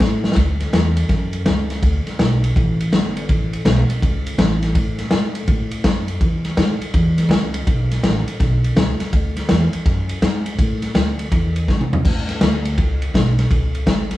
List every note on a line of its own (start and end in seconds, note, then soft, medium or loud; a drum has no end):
0.00 0.36 A2 medium
0.00 kick medium
0.00 snare loud
0.00 ride medium
0.24 snare medium
0.32 snare loud
0.36 0.72 D2 medium
0.36 kick loud
0.36 ride medium
0.60 snare soft
0.60 ride medium
0.73 1.08 E2 loud
0.73 snare loud
0.73 ride medium
0.97 ride medium
1.09 1.45 F#2 medium
1.09 kick loud
1.09 snare soft
1.09 ride medium
1.33 ride medium
1.45 1.81 C#2 medium
1.45 snare loud
1.45 ride medium
1.70 snare soft
1.70 ride medium
1.82 2.05 D2 medium
1.82 kick loud
1.82 ride medium
2.06 muted upright bass stroke soft
2.06 snare soft
2.06 ride medium
2.19 2.55 B1 medium
2.19 snare loud
2.19 ride medium
2.44 ride medium
2.56 2.92 A1 medium
2.56 kick loud
2.56 ride medium
2.80 ride medium
2.92 3.28 G1 medium
2.92 snare loud
2.92 ride medium
3.17 ride medium
3.29 3.65 A1 medium
3.29 kick loud
3.29 ride medium
3.53 ride medium
3.65 3.87 B1 loud
3.65 snare loud
3.65 ride medium
3.90 ride medium
4.02 4.37 C#2 medium
4.02 kick loud
4.02 ride medium
4.27 ride medium
4.38 4.74 A1 loud
4.38 snare loud
4.38 ride medium
4.62 snare soft
4.62 ride medium
4.75 5.10 A2 medium
4.75 kick loud
4.75 ride medium
4.99 snare soft
4.99 ride medium
5.11 5.47 G#2 medium
5.11 snare loud
5.11 ride medium
5.35 ride medium
5.48 5.83 A2 medium
5.48 kick loud
5.48 ride medium
5.71 ride medium
5.84 6.20 F#2 medium
5.84 kick medium
5.84 snare loud
5.84 ride medium
6.08 ride medium
6.21 6.56 E2 medium
6.21 kick loud
6.21 ride medium
6.45 snare soft
6.45 ride medium
6.57 6.79 G#2 loud
6.57 snare loud
6.57 ride medium
6.80 muted upright bass stroke soft
6.80 ride medium
6.94 7.28 E2 loud
6.94 kick loud
6.94 ride medium
7.18 snare soft
7.18 ride medium
7.29 7.65 C#2 loud
7.29 snare loud
7.29 ride medium
7.54 ride medium
7.67 8.02 B1 medium
7.67 kick loud
7.67 ride medium
7.91 snare soft
7.91 ride medium
8.03 8.25 A1 loud
8.03 snare loud
8.03 ride medium
8.27 muted upright bass stroke soft
8.27 ride medium
8.40 8.75 B1 loud
8.40 kick loud
8.40 snare soft
8.40 ride medium
8.64 ride medium
8.76 8.98 C#2 loud
8.76 snare loud
8.76 ride medium
9.00 muted upright bass stroke soft
9.00 snare soft
9.00 ride medium
9.13 9.48 D2 medium
9.13 kick loud
9.13 ride medium
9.37 snare soft
9.37 ride medium
9.49 9.72 E2 loud
9.49 snare loud
9.49 ride medium
9.73 muted upright bass stroke soft
9.73 ride medium
9.86 10.21 F#2 loud
9.86 kick loud
9.86 snare soft
9.86 ride medium
10.09 ride medium
10.22 10.58 G#2 loud
10.22 snare loud
10.22 ride medium
10.46 ride medium
10.58 10.94 A2 medium
10.58 kick loud
10.58 ride medium
10.82 snare soft
10.82 ride medium
10.94 11.30 D2 loud
10.94 snare loud
10.94 ride medium
11.19 ride medium
11.32 11.67 E2 loud
11.32 kick loud
11.32 ride medium
11.56 ride medium
11.68 12.04 G#2 loud
11.68 kick medium
11.68 snare medium
11.81 mid tom medium
11.93 floor tom loud
12.05 12.40 A2 medium
12.05 kick loud
12.05 crash loud
12.29 snare soft
12.29 ride medium
12.41 12.76 D2 loud
12.41 snare loud
12.41 ride medium
12.65 ride medium
12.78 13.13 C#2 medium
12.78 kick loud
12.78 ride medium
13.02 ride medium
13.14 13.50 B1 medium
13.14 kick medium
13.14 snare loud
13.14 ride medium
13.39 snare soft
13.39 ride medium
13.51 13.86 C#2 medium
13.51 kick loud
13.51 ride medium
13.75 ride medium
13.86 14.17 G#1 loud
13.86 snare loud
13.86 ride medium
14.11 snare soft
14.11 ride medium